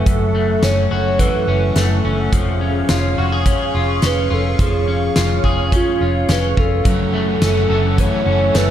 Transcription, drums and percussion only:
0.06 kick, closed hi-hat
0.63 snare, closed hi-hat
1.19 kick, closed hi-hat
1.76 snare, closed hi-hat
2.33 kick, closed hi-hat
2.89 snare, closed hi-hat
3.46 kick, closed hi-hat
4.02 snare, closed hi-hat
4.59 kick, closed hi-hat
5.16 snare, closed hi-hat
5.44 kick
5.72 kick, closed hi-hat
6.29 snare, closed hi-hat
6.57 kick
6.85 kick, closed hi-hat
7.42 snare, closed hi-hat
7.98 kick, closed hi-hat
8.55 snare, closed hi-hat

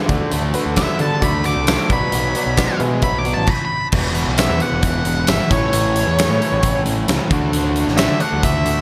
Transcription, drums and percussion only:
0.09 kick, closed hi-hat
0.32 closed hi-hat
0.54 closed hi-hat
0.76 kick, snare, closed hi-hat, tambourine
0.99 closed hi-hat
1.22 kick, closed hi-hat
1.44 closed hi-hat
1.67 snare, closed hi-hat, tambourine
1.90 kick, closed hi-hat
2.12 closed hi-hat
2.35 closed hi-hat
2.57 kick, snare, closed hi-hat, tambourine
2.80 closed hi-hat
3.02 kick, closed hi-hat
3.25 closed hi-hat
3.47 kick, crash
3.92 kick, crash
4.15 closed hi-hat
4.38 snare, closed hi-hat, tambourine
4.60 closed hi-hat
4.83 kick, closed hi-hat
5.05 closed hi-hat
5.27 snare, closed hi-hat, tambourine
5.51 kick, closed hi-hat
5.73 closed hi-hat
5.96 closed hi-hat
6.19 snare, closed hi-hat, tambourine
6.42 closed hi-hat
6.63 kick, closed hi-hat
6.86 closed hi-hat
7.08 snare, closed hi-hat, tambourine
7.31 kick, closed hi-hat
7.53 closed hi-hat
7.76 closed hi-hat
7.88 snare
7.98 snare, closed hi-hat, tambourine
8.20 closed hi-hat
8.43 kick, closed hi-hat
8.66 closed hi-hat

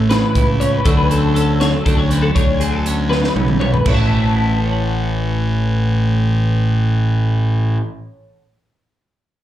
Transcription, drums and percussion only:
0.10 snare, closed hi-hat
0.35 kick, closed hi-hat
0.61 closed hi-hat
0.85 kick, closed hi-hat
1.11 closed hi-hat
1.36 closed hi-hat
1.61 snare, closed hi-hat
1.86 kick, closed hi-hat
2.11 closed hi-hat
2.36 kick, closed hi-hat
2.61 closed hi-hat
2.86 closed hi-hat
3.12 snare
3.24 snare
3.36 high tom
3.48 mid tom
3.61 mid tom
3.74 floor tom
3.86 kick, crash

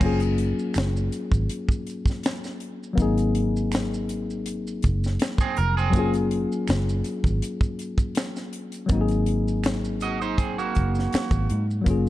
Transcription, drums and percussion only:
0.01 kick, crash, maracas
0.20 closed hi-hat, maracas
0.38 closed hi-hat
0.59 maracas
0.74 finger snap, snare, closed hi-hat, maracas
0.96 maracas
1.12 closed hi-hat, maracas
1.32 kick, maracas
1.49 closed hi-hat, maracas
1.69 kick, maracas
1.87 closed hi-hat, maracas
2.06 kick, maracas
2.10 snare
2.23 finger snap, snare, closed hi-hat, maracas
2.44 snare, maracas
2.60 closed hi-hat
2.83 maracas
2.98 kick, closed hi-hat, maracas
3.18 closed hi-hat, maracas
3.35 closed hi-hat
3.56 maracas
3.72 finger snap, snare, closed hi-hat, maracas
3.94 maracas
4.09 closed hi-hat, maracas
4.30 maracas
4.46 closed hi-hat, maracas
4.67 maracas
4.82 kick, closed hi-hat, maracas
5.04 snare, maracas
5.20 finger snap, snare, closed hi-hat, maracas
5.38 kick, maracas
5.57 closed hi-hat
5.78 maracas
5.93 kick, closed hi-hat, maracas
6.14 closed hi-hat, maracas
6.31 closed hi-hat
6.52 maracas
6.68 finger snap, snare, closed hi-hat, maracas
6.89 maracas
7.04 closed hi-hat, maracas
7.24 kick, maracas
7.42 closed hi-hat, maracas
7.61 kick, maracas
7.79 closed hi-hat, maracas
7.98 kick, maracas
8.15 finger snap, snare, closed hi-hat, maracas
8.36 snare, maracas
8.53 closed hi-hat
8.72 closed hi-hat, maracas
8.89 kick, closed hi-hat, maracas
9.08 closed hi-hat, maracas
9.26 closed hi-hat
9.48 maracas
9.64 finger snap, snare, closed hi-hat, maracas
9.85 maracas
10.00 closed hi-hat, maracas
10.22 maracas
10.38 kick, closed hi-hat, maracas
10.59 maracas
10.75 kick, closed hi-hat, maracas
10.95 maracas
10.99 snare
11.13 finger snap, snare, closed hi-hat, maracas
11.31 kick, maracas
11.50 closed hi-hat
11.71 maracas
11.86 kick, closed hi-hat, maracas

